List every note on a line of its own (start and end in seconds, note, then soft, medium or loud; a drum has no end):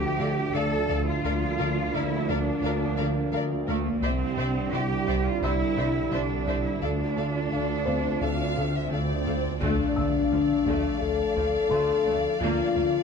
0.00 0.47 D2 medium
0.00 3.84 D3 medium
0.00 3.85 F3 medium
0.00 4.03 F3 medium
0.00 1.21 A3 medium
0.00 1.24 A3 medium
0.00 3.85 D4 medium
0.00 4.03 D4 medium
0.00 0.54 G4 medium
0.00 4.02 D5 medium
0.00 0.17 A#5 medium
0.19 0.40 D3 medium
0.19 0.29 A4 medium
0.19 0.28 D5 medium
0.19 0.27 F5 medium
0.54 1.16 D2 medium
0.54 0.76 D3 medium
0.54 1.07 A4 medium
0.54 0.63 A4 medium
0.54 0.63 D5 medium
0.54 2.60 D5 soft
0.54 0.63 F5 medium
0.89 1.10 D2 medium
0.89 0.97 A4 medium
0.89 0.97 D5 medium
0.89 0.97 F5 medium
1.06 1.92 F4 medium
1.24 1.86 D2 medium
1.24 1.45 D2 medium
1.24 3.84 A#3 medium
1.24 4.04 A#3 medium
1.24 1.32 A#4 medium
1.24 1.33 D5 medium
1.24 1.32 F5 medium
1.58 1.80 D3 medium
1.58 1.67 A#4 medium
1.58 1.68 D5 medium
1.58 1.66 F5 medium
1.93 2.55 D2 medium
1.93 2.16 D3 medium
1.93 2.29 E4 medium
1.93 2.02 A#4 medium
1.93 2.03 D5 medium
1.93 2.01 F5 medium
2.29 2.50 D2 medium
2.29 3.33 D4 medium
2.29 2.37 A#4 medium
2.29 2.38 D5 medium
2.29 2.37 F5 soft
2.62 3.25 D2 medium
2.62 2.84 D2 medium
2.62 2.72 A#4 medium
2.62 2.72 D5 medium
2.62 2.70 F5 medium
2.97 3.20 D3 medium
2.97 3.06 A#4 medium
2.97 3.07 D5 medium
2.97 3.05 F5 medium
3.33 3.95 D2 medium
3.33 3.54 D3 medium
3.33 3.41 A#4 medium
3.33 3.43 D5 medium
3.33 3.41 F5 medium
3.67 3.89 D2 medium
3.67 3.85 A3 medium
3.67 3.75 A#4 medium
3.67 3.77 D5 medium
3.67 3.76 F5 medium
3.86 4.03 A#3 medium
4.01 4.23 C2 medium
4.01 4.65 C2 medium
4.01 9.24 D3 medium
4.01 6.77 G3 medium
4.01 6.83 G3 medium
4.01 4.73 C4 medium
4.01 9.25 D4 medium
4.01 9.58 D4 medium
4.01 6.77 E4 medium
4.01 6.83 E4 medium
4.01 4.11 C5 medium
4.01 4.11 D5 medium
4.01 9.58 D5 medium
4.01 4.11 E5 medium
4.37 4.59 C3 medium
4.37 4.45 C5 medium
4.37 4.48 D5 medium
4.37 4.46 E5 soft
4.72 5.35 C2 medium
4.72 4.94 C3 medium
4.72 5.25 G4 medium
4.72 4.80 C5 medium
4.72 4.82 D5 medium
4.72 4.81 E5 soft
5.08 5.29 C2 medium
5.08 5.16 C5 soft
5.08 5.17 D5 medium
5.08 5.16 E5 soft
5.25 5.43 F4 medium
5.42 5.63 C2 medium
5.42 6.04 C2 medium
5.42 6.11 E4 medium
5.42 5.50 C5 medium
5.42 5.52 D5 medium
5.42 5.51 E5 medium
5.42 7.49 E6 soft
5.77 5.98 C3 medium
5.77 5.85 C5 soft
5.77 5.86 D5 soft
5.77 5.86 E5 soft
6.11 6.74 C2 medium
6.11 6.33 C3 medium
6.11 6.65 D4 medium
6.11 6.21 C5 medium
6.11 6.20 D5 medium
6.11 6.20 E5 medium
6.47 6.68 C2 medium
6.47 6.56 C5 soft
6.47 6.56 D5 soft
6.47 6.55 E5 soft
6.64 6.82 E4 medium
6.82 7.44 D2 medium
6.82 7.03 D2 medium
6.82 9.61 A3 medium
6.82 9.26 A3 medium
6.82 8.91 D4 medium
6.82 9.61 F4 medium
6.82 9.26 F4 medium
6.82 6.91 A4 medium
6.82 6.90 D5 soft
6.82 6.90 F5 medium
6.82 swell medium
7.17 7.38 D3 medium
7.17 7.26 A4 soft
7.17 7.25 D5 soft
7.17 7.26 F5 soft
7.52 8.14 D2 medium
7.52 7.73 D3 medium
7.52 8.18 A4 medium
7.52 7.60 A4 soft
7.52 7.60 F5 soft
7.85 8.08 D2 medium
7.85 9.57 C4 soft
7.85 7.94 A4 soft
7.85 9.57 C5 medium
7.85 7.95 F5 soft
8.21 8.83 D2 medium
8.21 8.42 D2 medium
8.21 8.30 A4 soft
8.21 8.74 F5 medium
8.21 8.30 F5 soft
8.56 8.78 D3 medium
8.56 8.65 A4 soft
8.56 8.64 F5 soft
8.75 8.92 E5 medium
8.91 9.53 D2 medium
8.91 9.13 D3 medium
8.91 8.99 A4 soft
8.91 9.60 D5 medium
8.91 9.00 F5 soft
9.26 9.48 D2 medium
9.26 9.34 A4 soft
9.26 9.34 F5 soft
9.61 9.69 D2 medium
9.61 9.70 D2 medium
9.61 9.83 D2 medium
9.61 13.03 F3 medium
9.61 9.94 A3 medium
9.61 12.38 A3 medium
9.61 10.97 D4 medium
9.61 13.03 D4 medium
9.61 13.03 D5 medium
9.61 13.03 F5 medium
9.61 impact medium
9.96 10.05 D2 medium
9.96 10.05 D2 soft
9.96 10.18 D3 medium
9.96 10.06 A3 medium
9.96 12.02 E6 medium
10.31 10.39 D2 soft
10.31 10.39 D2 medium
10.31 10.53 D3 medium
10.31 10.40 F3 soft
10.66 10.74 D2 medium
10.66 10.87 D2 medium
10.66 10.99 A3 medium
11.00 11.23 D2 medium
11.00 12.40 A4 medium
11.36 11.44 D2 medium
11.36 11.57 D2 medium
11.36 11.45 F3 soft
11.70 11.78 D2 medium
11.70 11.79 D2 medium
11.70 11.92 D2 medium
11.70 12.04 A3 medium
11.70 13.03 C6 medium
12.05 12.13 D2 soft
12.05 12.27 D2 medium
12.05 12.15 D2 medium
12.05 12.15 A3 medium
12.40 12.49 D2 medium
12.40 12.62 D2 medium
12.40 12.50 D2 medium
12.40 13.03 A#3 medium
12.40 12.73 A#3 medium
12.40 13.03 F4 medium
12.75 12.84 D2 soft
12.75 12.97 D3 medium
12.75 12.83 A#3 medium